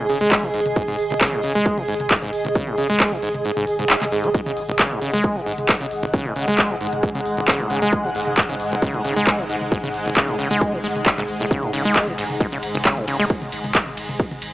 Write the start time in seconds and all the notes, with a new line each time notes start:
Already playing: G#4 D#5 G#5
0.09 G#1 C#3, open hi-hat
0.21 G#1 G#3, closed hi-hat, mid tom
0.31 kick, clap, closed hi-hat
0.43 G#1 D#3, mid tom
0.54 G#1 G#2, open hi-hat
0.66 G#1, closed hi-hat, mid tom
0.76 G#2, kick, closed hi-hat
0.88 G#1 G#2, mid tom
0.99 G#1, open hi-hat
1.10 G#1, closed hi-hat, mid tom
1.21 C#3, kick, clap, closed hi-hat
1.33 G#1 G#2, mid tom
1.43 G#1 C#3, open hi-hat
1.55 G#1 G#3, closed hi-hat, mid tom
1.66 kick, closed hi-hat
1.78 G#1 D#3, mid tom
1.88 G#1 G#2, open hi-hat
2.00 G#1, closed hi-hat, mid tom
2.11 G#2, kick, clap, closed hi-hat
2.22 G#1 G#2, mid tom
2.33 G#1, open hi-hat
2.45 G#1, closed hi-hat, mid tom
2.55 C#3, kick, closed hi-hat
2.67 G#1 G#2, mid tom
2.78 G#1 C#3, open hi-hat
2.90 G#1 G#3, closed hi-hat, mid tom
3.00 kick, clap, closed hi-hat
3.12 G#1 D#3, open hi-hat, mid tom
3.22 G#1 G#2, open hi-hat
3.34 G#1, closed hi-hat, mid tom
3.45 G#2, closed hi-hat
3.57 G#1 G#2, mid tom
3.67 G#1, open hi-hat
3.79 G#1 G#2, closed hi-hat, mid tom
3.90 G#2, clap, closed hi-hat
3.94 F#5
4.02 G#1 G#3, clap, mid tom
4.12 G#1 G#2, open hi-hat
4.24 G#1 B3, closed hi-hat, mid tom
4.34 G#2 G#3, kick, closed hi-hat
4.46 G#1 C#3, mid tom
4.57 G#1, open hi-hat
4.69 G#1, closed hi-hat, mid tom
4.79 C#3, kick, clap, closed hi-hat
4.91 G#1 G#2, mid tom
5.02 G#1 C#3, open hi-hat
5.13 G#1 G#3, closed hi-hat, mid tom
5.24 kick, closed hi-hat
5.36 G#1 D#3, mid tom
5.46 G#1 G#2, open hi-hat
5.58 G#1, closed hi-hat, mid tom
5.69 G#2, kick, clap, closed hi-hat
5.81 G#1 C#3, mid tom
5.91 G#1, open hi-hat
6.03 G#1, closed hi-hat, mid tom
6.14 C#3, kick, closed hi-hat
6.25 G#1 G#2, mid tom
6.36 G#1 C#3, open hi-hat
6.48 G#1 G#3, closed hi-hat, mid tom
6.58 kick, clap, closed hi-hat
6.70 G#1 D#3, mid tom
6.81 G#1 G#2, open hi-hat
6.93 G#1, closed hi-hat, mid tom
7.03 G#2, kick, closed hi-hat
7.15 G#1 C#3, mid tom
7.26 G#1, open hi-hat
7.37 G#1, closed hi-hat, mid tom
7.48 C#3, kick, clap, closed hi-hat
7.60 G#1 G#2, mid tom
7.70 G#1 C#3, open hi-hat
7.82 G#1 G#3, closed hi-hat, mid tom
7.93 kick, closed hi-hat
8.04 G#1 D#3, mid tom
8.15 G#1 G#2, open hi-hat
8.27 G#1, closed hi-hat, mid tom
8.37 G#2, kick, clap, closed hi-hat
8.49 G#1 C#3, mid tom
8.60 G#1, open hi-hat
8.72 G#1, closed hi-hat, mid tom
8.82 C#3, kick, closed hi-hat
8.94 G#1 G#2, mid tom
9.05 G#1 C#3, open hi-hat
9.16 G#1 G#3, closed hi-hat, mid tom
9.27 kick, clap, closed hi-hat
9.39 G#1 D#3, mid tom
9.49 G#1 G#2, open hi-hat
9.61 G#1, closed hi-hat, mid tom
9.72 G#2, kick, closed hi-hat
9.84 G#1 C#3, mid tom
9.94 G#1, open hi-hat
10.06 G#1, closed hi-hat, mid tom
10.16 C#3, kick, clap, closed hi-hat
10.28 G#1 G#2, open hi-hat, mid tom
10.39 G#1 C#3, open hi-hat
10.51 G#1 G#3, closed hi-hat, mid tom
10.61 kick, closed hi-hat
10.73 G#1 D#3, mid tom
10.84 G#1 G#3, open hi-hat
10.96 G#1, closed hi-hat, mid tom
11.06 G#2, kick, clap, closed hi-hat
11.18 G#1 G#2, clap, mid tom
11.29 G#1, open hi-hat
11.40 G#1 A2, closed hi-hat, mid tom
11.51 C#3, kick, closed hi-hat
11.63 G#1 G#2, mid tom
11.73 G#1 C#3, open hi-hat, ride
11.85 G#1 G#3, closed hi-hat, mid tom
11.96 kick, clap, closed hi-hat
12.08 G#1 D#3, mid tom
12.18 G#1 G#2, open hi-hat, ride
12.30 G#1, closed hi-hat, mid tom
12.40 G#2, kick, closed hi-hat
12.52 G#1 C#3, mid tom
12.63 G#1, open hi-hat, ride
12.75 G#1, closed hi-hat, mid tom
12.85 C#3, kick, clap, closed hi-hat
12.97 G#1 G#2, mid tom
13.08 G#1 C#3, open hi-hat, ride
13.19 G#1 G#3, closed hi-hat, mid tom
13.30 kick, closed hi-hat
13.42 G#1, mid tom
13.52 G#1, open hi-hat, ride
13.64 G#1, closed hi-hat, mid tom
13.75 kick, clap, closed hi-hat
13.87 G#1, mid tom
13.97 G#1, open hi-hat, ride
14.09 G#1, closed hi-hat, mid tom
14.20 kick, closed hi-hat
14.31 G#1, mid tom
14.42 G#1, open hi-hat, ride